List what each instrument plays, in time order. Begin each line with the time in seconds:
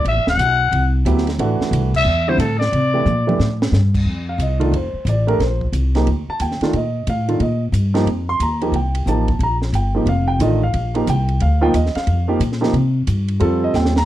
0.04 upright bass A1, trumpet E5, ride
0.16 upright bass F#1
0.27 upright bass D1, trumpet F#5, snare
0.37 upright bass B1, hi-hat pedal, ride
0.72 upright bass C2, ride
1.05 upright bass D2, grand piano F#3 B3 E4 G4, hi-hat pedal, ride
1.18 snare
1.27 snare, ride
1.38 upright bass A1, grand piano E3 A3 D4 F#4, ride
1.60 muted upright bass stroke, snare
1.71 upright bass C2, hi-hat pedal, ride
1.94 trumpet E5, kick, crash
2.05 upright bass E2
2.28 grand piano D3 G3 C4 E4, trumpet C5
2.38 upright bass A2, trumpet A4, hi-hat pedal, ride
2.59 trumpet D5, snare
2.72 upright bass C3, ride
2.94 grand piano E3 A3 D4 G4
3.06 upright bass A#2, hi-hat pedal, mid tom
3.27 grand piano E3 A3 D4 G4, mid tom
3.39 upright bass A2, snare
3.62 snare
3.72 upright bass G2, snare, hi-hat pedal
3.94 kick, crash
4.05 upright bass F2
4.29 grand piano F5
4.38 upright bass C2, grand piano D#5, hi-hat pedal, ride
4.60 grand piano D#3 A3 D4 F4, ride
4.71 upright bass F1, ride
4.76 grand piano C5
4.93 muted upright bass stroke
5.05 upright bass A1, hi-hat pedal, ride
5.09 grand piano D5
5.27 grand piano A3 D4 G4 A#4, ride
5.39 upright bass A#1, grand piano C5, snare, ride
5.61 kick
5.72 upright bass C2, hi-hat pedal, ride
5.95 grand piano F3 A#3 D#4 G4, snare, ride
6.07 upright bass D2, ride
6.28 grand piano A5, muted upright bass stroke
6.40 upright bass D#2, grand piano G5, hi-hat pedal, ride
6.51 snare
6.61 grand piano D#3 A3 D4 F4, muted upright bass stroke, snare, ride
6.73 upright bass A#2, grand piano D#5, ride
7.07 upright bass A2, grand piano F5, hi-hat pedal, ride
7.28 grand piano D#3 A3 D4 F4, ride
7.40 upright bass A#2, grand piano D#5, ride
7.72 upright bass G2, hi-hat pedal, ride
7.94 grand piano F3 A#3 D#4 G4, snare, ride
8.06 upright bass F2, ride
8.29 grand piano C6
8.40 upright bass D#2, grand piano A#5, hi-hat pedal, ride
8.61 grand piano F3 A#3 D#4 G4, ride
8.72 upright bass C2, grand piano G5, ride
8.95 ride
9.06 upright bass A1, grand piano F3 A#3 D#4 G4 A5, hi-hat pedal
9.28 kick, ride
9.39 upright bass A#1, ride
9.43 grand piano A#5
9.62 snare
9.73 upright bass G1, grand piano G5, hi-hat pedal, ride
9.95 grand piano F3 A#3 D#4 G4
10.06 upright bass F1, grand piano F5, ride
10.28 grand piano G5
10.39 upright bass A1, grand piano D#3 A3 D4 F4 D#5, hi-hat pedal, ride
10.63 grand piano F5
10.74 upright bass A#1, ride
10.94 grand piano F3 A#3 D#4 G4, ride
11.07 upright bass C2, grand piano G5, hi-hat pedal, ride
11.28 ride
11.40 upright bass D2, grand piano F5, ride
11.61 grand piano F3 A#3 D#4 F4 G5
11.74 upright bass D#2, grand piano D#5, hi-hat pedal, ride
11.86 snare
11.95 grand piano F5, muted upright bass stroke, snare, ride
12.07 upright bass F2, ride
12.28 grand piano F3 A#3 D#4 G4
12.40 upright bass A#2, hi-hat pedal, ride
12.52 snare
12.61 grand piano F3 A#3 D#4 G4, snare
12.73 upright bass C3, ride
13.07 upright bass G2, hi-hat pedal, ride
13.28 ride
13.40 upright bass F2, grand piano G3 C4 F4 A4, ride
13.64 grand piano D#5
13.74 upright bass D#2, grand piano G5, snare, hi-hat pedal
13.85 snare
13.96 grand piano A#5, snare